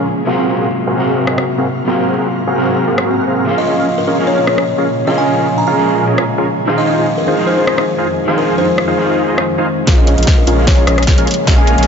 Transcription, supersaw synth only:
0.27 0.55 C4 loud
0.27 0.55 F#4 medium
0.27 0.55 G#4 medium
0.27 0.55 A#4 medium
0.27 0.55 F5 loud
0.58 0.67 C4 medium
0.58 0.67 F#4 medium
0.58 0.67 G#4 medium
0.58 0.67 A#4 medium
0.58 0.67 F5 medium
0.87 1.25 C4 medium
0.87 1.25 F#4 medium
0.87 1.25 G#4 medium
0.87 1.25 A#4 medium
0.87 1.25 F5 loud
1.27 1.43 C4 medium
1.27 1.43 F#4 medium
1.27 1.43 G#4 medium
1.27 1.43 A#4 medium
1.27 1.43 D#5 medium
1.58 1.67 C4 medium
1.58 1.67 F#4 medium
1.58 1.67 G#4 medium
1.58 1.67 A#4 medium
1.58 1.67 F5 medium
1.87 2.16 C4 medium
1.87 2.15 F#4 medium
1.87 2.16 G#4 medium
1.87 2.15 A#4 medium
1.87 2.16 F5 loud
2.18 2.27 C4 medium
2.18 2.27 F#4 medium
2.18 2.27 G#4 medium
2.18 2.27 A#4 medium
2.18 2.27 F5 medium
2.47 2.85 C4 medium
2.47 2.85 F#4 medium
2.47 2.85 G#4 medium
2.47 2.85 A#4 medium
2.47 2.85 F5 loud
2.87 3.15 C4 medium
2.87 3.15 F#4 medium
2.87 3.15 G#4 medium
2.87 3.15 A#4 medium
2.87 3.16 F5 medium
3.18 3.25 C4 medium
3.18 3.25 F#4 medium
3.18 3.25 G#4 medium
3.18 3.25 A#4 medium
3.18 3.25 F#5 medium
3.27 3.45 C4 medium
3.27 3.45 F#4 medium
3.27 3.45 G#4 medium
3.27 3.45 A#4 medium
3.27 3.45 F5 loud
3.47 3.75 C#4 medium
3.47 3.75 F4 medium
3.47 3.75 G#4 medium
3.47 3.75 A#4 medium
3.47 3.75 F5 loud
3.78 3.87 C#4 medium
3.78 3.87 F4 medium
3.78 3.87 G#4 medium
3.78 3.87 A#4 medium
3.78 3.87 F5 medium
4.07 4.45 C#4 medium
4.07 4.45 F4 medium
4.07 4.45 G#4 medium
4.07 4.45 A#4 medium
4.07 4.45 F5 loud
4.47 4.63 C#4 medium
4.47 4.63 F4 medium
4.47 4.63 G#4 medium
4.47 4.63 A#4 medium
4.47 4.63 D#5 medium
4.78 4.87 C#4 medium
4.78 4.87 F4 medium
4.78 4.87 G#4 medium
4.78 4.87 A#4 medium
4.78 4.87 F5 medium
5.07 5.35 C#4 medium
5.07 5.35 F4 medium
5.07 5.35 G#4 medium
5.07 5.35 A#4 medium
5.07 5.36 F5 loud
5.38 5.47 C#4 medium
5.38 5.47 F4 medium
5.38 5.47 G#4 medium
5.38 5.47 A#4 medium
5.38 5.47 F5 medium
5.67 6.05 C#4 medium
5.67 6.05 F4 medium
5.67 6.05 G#4 medium
5.67 6.05 A#4 medium
5.67 6.05 F5 loud
6.07 6.23 C#4 medium
6.07 6.23 F4 medium
6.07 6.23 G#4 medium
6.07 6.23 A#4 medium
6.07 6.23 D#5 medium
6.38 6.47 C#4 medium
6.38 6.47 F4 medium
6.38 6.47 G#4 medium
6.38 6.47 A#4 medium
6.38 6.47 F5 medium
6.67 6.96 D#4 loud
6.67 6.96 F4 medium
6.67 6.96 G#4 medium
6.67 6.96 C5 medium
6.67 6.96 F5 loud
6.98 7.07 D#4 medium
6.98 7.07 F4 medium
6.98 7.07 G#4 medium
6.98 7.07 C5 medium
6.98 7.07 F5 medium
7.28 7.65 D#4 medium
7.28 7.65 F4 medium
7.28 7.65 G#4 medium
7.28 7.65 C5 medium
7.28 7.65 F5 loud
7.68 7.83 D#4 medium
7.68 7.83 F4 medium
7.68 7.83 G#4 medium
7.68 7.83 C5 medium
7.68 7.83 D#5 medium
7.98 8.07 D#4 medium
7.98 8.07 F4 medium
7.98 8.07 G#4 medium
7.98 8.07 C5 medium
7.98 8.07 F5 medium
8.28 8.56 D#4 loud
8.28 8.56 F4 medium
8.28 8.56 G#4 medium
8.28 8.56 C5 medium
8.28 8.56 F5 loud
8.58 8.67 D#4 medium
8.58 8.67 F4 medium
8.58 8.67 G#4 medium
8.58 8.67 C5 medium
8.58 8.67 F5 medium
8.88 9.25 D#4 medium
8.88 9.25 F4 medium
8.88 9.25 G#4 medium
8.88 9.25 C5 medium
8.88 9.25 F5 loud
9.28 9.43 D#4 medium
9.28 9.43 F4 medium
9.28 9.43 G#4 medium
9.28 9.43 C5 medium
9.28 9.43 D#5 medium
9.58 9.67 D#4 medium
9.58 9.67 F4 medium
9.58 9.67 G#4 medium
9.58 9.67 C5 medium
9.58 9.67 F5 loud
9.87 10.15 C#4 loud
9.87 10.15 F4 medium
9.87 10.15 G#4 medium
9.87 10.15 A#4 medium
9.87 10.15 F5 loud
10.18 10.27 C#4 medium
10.18 10.27 F4 medium
10.18 10.27 G#4 medium
10.18 10.27 A#4 medium
10.18 10.27 F5 medium
10.47 10.85 C#4 medium
10.47 10.85 F4 medium
10.47 10.85 G#4 medium
10.47 10.85 A#4 medium
10.47 10.85 F5 loud
10.87 11.03 C#4 medium
10.87 11.03 F4 medium
10.87 11.03 G#4 medium
10.87 11.03 A#4 medium
10.87 11.03 D#5 medium
11.18 11.27 C#4 medium
11.18 11.27 F4 medium
11.18 11.27 G#4 medium
11.18 11.27 A#4 medium
11.18 11.27 F5 medium
11.47 11.75 C#4 loud
11.47 11.75 F4 medium
11.47 11.75 G#4 medium
11.47 11.75 A#4 medium
11.47 11.75 F5 loud
11.78 11.87 C#4 medium
11.78 11.87 F4 medium
11.78 11.87 G#4 medium
11.78 11.87 A#4 medium
11.78 11.87 F5 medium

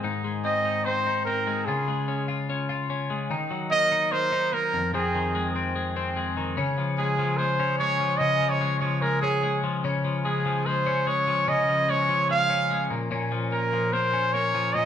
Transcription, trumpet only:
0.44 0.86 D#5 medium
0.84 1.24 C5 loud
1.25 1.67 A#4 medium
1.65 2.28 G#4 medium
3.71 4.13 D#5 loud
4.11 4.55 C5 loud
4.53 4.93 A#4 loud
4.94 5.51 G#4 medium
6.98 7.39 G#4 medium
7.37 7.78 C5 loud
7.78 8.20 C#5 loud
8.18 8.51 D#5 loud
8.50 8.79 C#5 loud
8.80 9.03 C#5 medium
9.01 9.21 A#4 loud
9.21 9.60 G#4 medium
10.25 10.68 G#4 medium
10.66 11.09 C5 loud
11.07 11.50 C#5 loud
11.49 11.92 D#5 loud
11.90 12.30 C#5 loud
12.31 12.87 F5 loud
13.52 13.94 A#4 medium
13.93 14.34 C5 loud
14.33 14.75 C#5 loud
14.73 14.85 D#5 loud

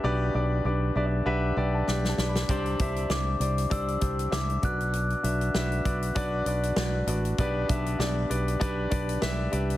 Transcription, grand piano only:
0.00 0.04 D4 loud
0.00 0.33 D4 medium
0.00 0.04 G4 medium
0.00 0.33 G4 medium
0.00 0.04 B4 medium
0.00 0.04 D5 loud
0.00 0.96 E5 medium
0.04 0.92 B2 medium
0.04 0.33 B4 medium
0.04 0.33 D5 loud
0.34 0.63 D4 medium
0.34 0.63 G4 medium
0.34 0.63 B4 medium
0.34 0.64 D5 medium
0.65 0.94 D4 medium
0.65 0.94 G4 medium
0.65 0.94 B4 medium
0.65 0.94 D5 medium
0.96 1.24 D4 medium
0.96 1.25 G4 medium
0.96 1.25 B4 medium
0.96 1.05 D5 medium
0.96 1.06 E5 medium
1.06 1.25 D5 medium
1.26 1.55 D4 medium
1.26 1.55 G4 medium
1.26 1.55 B4 medium
1.26 1.55 E5 loud
1.26 1.55 F#5 medium
1.57 1.86 D4 medium
1.57 1.86 G4 medium
1.57 1.86 B4 medium
1.57 1.86 D5 medium
1.57 1.73 G5 medium
1.75 1.87 A5 medium
1.88 2.16 D4 medium
1.88 2.17 G4 medium
1.88 2.17 B4 medium
1.88 2.17 D5 medium
1.88 2.07 G5 medium
2.09 2.27 A5 medium
2.19 2.47 D4 medium
2.19 2.47 G4 medium
2.19 2.48 B4 medium
2.19 2.48 D5 medium
2.29 2.48 B5 medium
2.50 3.37 C3 medium
2.50 2.78 D4 loud
2.50 2.78 G4 medium
2.50 2.78 C5 medium
2.50 2.79 D5 loud
2.80 3.08 D4 medium
2.80 3.09 G4 medium
2.80 3.09 C5 medium
2.80 3.09 E5 medium
3.10 3.39 D4 medium
3.10 3.39 G4 medium
3.10 3.39 C5 medium
3.10 3.39 E5 medium
3.40 3.69 D4 medium
3.40 3.69 G4 soft
3.40 3.70 C5 medium
3.40 3.70 D5 medium
3.70 3.99 D4 medium
3.70 4.00 G4 medium
3.70 4.00 C5 medium
3.70 4.00 D5 medium
4.01 4.29 D4 medium
4.01 4.30 G4 medium
4.01 4.30 C5 medium
4.01 4.30 D5 medium
4.31 4.60 D4 medium
4.31 4.61 G4 soft
4.31 4.61 C5 medium
4.31 4.61 E5 medium
4.62 5.51 B2 soft
4.62 5.20 D4 medium
4.62 5.20 F#4 medium
4.62 5.20 B4 medium
4.62 5.21 D5 medium
5.23 5.53 D4 medium
5.23 5.53 F#4 medium
5.23 5.53 B4 medium
5.23 5.53 E5 medium
5.55 5.84 D4 medium
5.55 5.84 F#4 medium
5.55 5.84 B4 medium
5.55 5.84 E5 medium
5.85 6.14 D4 medium
5.85 6.14 F#4 medium
5.85 6.14 B4 medium
5.85 6.14 D5 medium
6.15 6.45 D4 loud
6.15 6.45 F#4 medium
6.15 6.45 B4 medium
6.15 6.45 D5 loud
6.46 6.75 D4 medium
6.46 6.75 F#4 medium
6.46 6.75 B4 medium
6.46 6.76 D5 medium
6.77 7.06 D4 medium
6.77 7.06 F#4 medium
6.77 7.06 B4 medium
6.77 7.06 D5 medium
7.07 7.36 D4 medium
7.07 7.37 F#4 medium
7.07 7.37 B4 medium
7.07 7.37 D5 medium
7.39 8.27 B2 medium
7.39 7.67 D4 loud
7.39 7.67 G4 medium
7.39 7.68 B4 loud
7.39 7.68 D5 loud
7.69 7.97 D4 medium
7.69 7.98 G4 medium
7.69 7.98 B4 medium
7.69 7.98 E5 medium
7.99 8.28 D4 medium
7.99 8.28 G4 medium
7.99 8.28 B4 medium
7.99 8.29 D5 medium
8.30 8.58 D4 medium
8.30 8.59 G4 medium
8.30 8.59 B4 medium
8.30 8.59 D5 medium
8.60 8.89 D4 loud
8.60 8.89 G4 medium
8.60 8.89 B4 loud
8.60 8.90 D5 loud
8.90 9.20 D4 medium
8.90 9.20 G4 medium
8.90 9.20 B4 medium
8.90 9.20 D5 medium
9.21 9.50 D4 medium
9.21 9.50 G4 medium
9.21 9.51 B4 medium
9.21 9.51 E5 medium
9.51 9.77 D4 medium
9.51 9.77 G4 medium
9.51 9.77 B4 medium
9.51 9.77 D5 medium

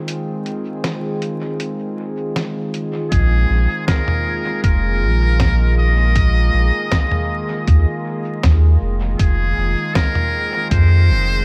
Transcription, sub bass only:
3.12 3.46 A#1 loud
3.50 3.67 A#1 medium
4.64 5.03 F1 medium
5.02 6.50 A#1 medium
6.54 6.71 A#1 medium
7.68 7.85 D#2 medium
8.44 8.77 D#2 medium
8.82 9.15 F1 medium
9.20 9.53 F1 loud
9.57 9.75 F1 medium
10.71 11.11 F2 medium
11.09 11.45 F1 medium

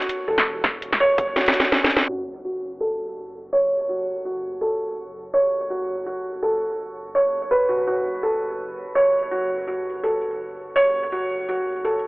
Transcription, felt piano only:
0.00 1.36 F#4 medium
0.00 0.28 A4 medium
0.00 1.00 C#5 loud
0.28 0.39 A4 medium
1.00 1.17 C#5 loud
1.36 1.48 F#4 medium
1.55 1.71 F#4 medium
1.73 1.89 C#4 medium
2.09 2.20 F#4 medium
2.45 2.62 F#4 medium
2.80 2.92 A4 medium
3.53 3.70 C#5 loud
3.89 4.01 F#4 medium
4.25 4.43 F#4 medium
4.61 4.73 A4 medium
5.34 5.51 C#5 medium
5.70 5.81 F#4 medium
6.06 6.23 F#4 medium
6.42 6.54 A4 medium
7.15 7.32 C#5 medium
7.51 7.67 B4 medium
7.69 7.85 F#4 medium
7.87 8.04 F#4 medium
8.23 8.34 A4 medium
8.95 9.13 C#5 loud
9.31 9.43 F#4 medium
9.67 9.85 F#4 medium
10.03 10.15 A4 medium
10.76 10.93 C#5 loud
11.12 11.24 F#4 medium
11.49 11.66 F#4 medium
11.85 11.96 A4 medium

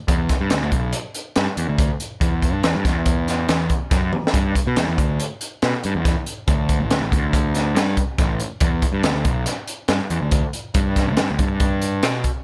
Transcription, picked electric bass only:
0.08 0.28 E2 medium
0.41 0.50 G2 medium
0.52 0.61 D2 medium
0.62 0.72 D2 medium
0.72 0.92 B1 medium
1.37 1.47 G2 medium
1.57 1.67 E2 medium
1.69 1.88 D2 medium
2.21 2.53 E2 medium
2.53 2.63 G2 medium
2.64 2.74 E2 medium
2.75 2.84 G2 medium
2.85 3.45 E2 medium
3.49 3.69 E2 medium
3.91 4.12 F#2 medium
4.34 4.54 G2 medium
4.67 4.77 B2 medium
4.77 4.87 E2 medium
4.88 4.98 E2 medium
4.99 5.19 D2 medium
5.63 5.73 B2 medium
5.85 5.94 G2 medium
5.95 6.15 E2 medium
6.48 6.81 D2 medium
6.80 6.90 A1 medium
6.91 7.00 D2 medium
7.00 7.11 A1 medium
7.12 7.75 D2 medium
7.75 7.96 G2 medium
8.19 8.39 A1 medium
8.61 8.81 E2 medium
8.93 9.03 G2 medium
9.04 9.14 D2 medium
9.14 9.25 D2 medium
9.25 9.46 B1 medium
9.89 9.99 G2 medium
10.10 10.21 E2 medium
10.22 10.42 D2 medium
10.75 11.09 G2 medium
11.08 11.17 D2 medium
11.19 11.28 G2 medium
11.31 11.39 D2 medium
11.40 12.04 G2 medium
12.04 12.24 B2 medium

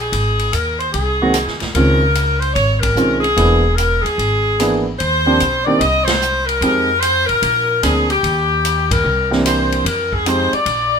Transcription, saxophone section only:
0.00 0.54 G#4 medium
0.53 0.80 A#4 medium
0.80 0.92 C5 medium
0.93 1.57 G#4 medium
1.75 2.39 A#4 medium
2.40 2.55 C5 medium
2.54 2.80 C#5 medium
2.80 3.22 A#4 medium
3.20 3.72 G#4 medium
3.75 4.03 A#4 medium
4.02 4.85 G#4 medium
4.98 5.62 C5 loud
5.65 5.79 D5 medium
5.79 6.07 D#5 medium
6.04 6.46 C5 loud
6.46 7.01 A#4 medium
7.00 7.28 C5 loud
7.27 7.82 A#4 medium
7.84 8.08 G#4 medium
8.11 8.87 G4 medium
8.91 9.32 A#4 medium
9.47 9.84 C5 medium
9.86 10.13 A#4 medium
10.13 10.26 G#4 medium
10.28 10.54 C5 medium
10.54 10.99 D5 medium

